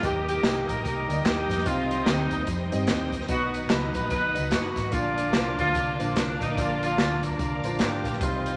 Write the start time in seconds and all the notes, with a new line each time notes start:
0.02 D#2 D#3 G3 A#3 D#4 G4 A#4 D#5 G5 D#6, kick, closed hi-hat, tambourine
0.27 A#3 D#4 G4, closed hi-hat, tambourine
0.43 C2 A#3 D#4 G4 D#5, snare, clap, closed hi-hat, tambourine
0.67 A#1 A#4, kick, closed hi-hat, tambourine
0.84 C2 D#4 G4 A#4, kick, closed hi-hat, tambourine
1.08 D2 A#3 D#4 G4 D5, closed hi-hat, tambourine
1.13 D#5
1.24 A#3 D#4 G4, kick, snare, clap, closed hi-hat, tambourine
1.49 F2, kick, snare, closed hi-hat, tambourine
1.58 snare
1.65 C2 C3 C4 D#4 F4 G4 C5 D#5, kick, closed hi-hat, tambourine
1.91 closed hi-hat, tambourine
2.06 D2 G3 C4 D#4 G4 D#5, snare, clap, closed hi-hat, tambourine
2.31 kick, closed hi-hat, tambourine
2.47 F2, kick, closed hi-hat, tambourine
2.72 G2 C4 D#4 G4 D#5, closed hi-hat, tambourine
2.87 D#2, kick, snare, clap, closed hi-hat, tambourine
3.12 kick, closed hi-hat, tambourine
3.21 snare
3.28 B1 B2 D#3 F#3 B3 D#4 F#4 B4 D#5 F#5, kick, closed hi-hat, tambourine
3.54 closed hi-hat, tambourine
3.69 C#2 B3 D#4 F#4 B4 D#5, snare, clap, closed hi-hat, tambourine
3.94 A#1 B4, kick, closed hi-hat, tambourine
4.10 B1 D#4 F#4 B4, kick, closed hi-hat, tambourine
4.34 C#2 B3 D#4 F#4 D#5, closed hi-hat, tambourine
4.51 F#1 B3 D#4 F#4, kick, snare, clap, closed hi-hat, tambourine
4.76 G#1, kick, snare, closed hi-hat, tambourine
4.91 A#1 A#2 D3 F3 A#3 D4 F4 A#4 D5 F5 D6, kick, closed hi-hat, tambourine
5.18 closed hi-hat, tambourine
5.33 C2 A#3 D4 F4 B4, snare, clap, closed hi-hat, tambourine
5.38 C5
5.58 D2 A#3 D4 F4, kick, closed hi-hat, tambourine
5.74 C2, kick, closed hi-hat, tambourine
5.99 A#1 A#3 D4 F4 C5, closed hi-hat, tambourine
6.16 C2 D4, kick, snare, clap, closed hi-hat, tambourine
6.41 A#1 D#4, kick, snare, closed hi-hat, tambourine
6.56 A#1 A#2 A#3 D4 F4 D5, kick, closed hi-hat, tambourine
6.83 A#3 D4 F4, closed hi-hat, tambourine
6.98 D2 A#3 D4 F4 D5, snare, clap, closed hi-hat, tambourine
7.23 A#4, kick, closed hi-hat, tambourine
7.39 C2 D4 F4 A#4, kick, closed hi-hat, tambourine
7.63 A#1 A#3 D4 F4 C5, closed hi-hat, tambourine
7.79 G#1 A#3 D4 G4, kick, snare, clap, closed hi-hat, tambourine
8.04 A#1, kick, snare, closed hi-hat, tambourine
8.13 snare
8.20 C2 C3 D#3 G3 C4 D#4 F4 G4 C5 D#5 C6, kick, closed hi-hat, tambourine
8.46 closed hi-hat, tambourine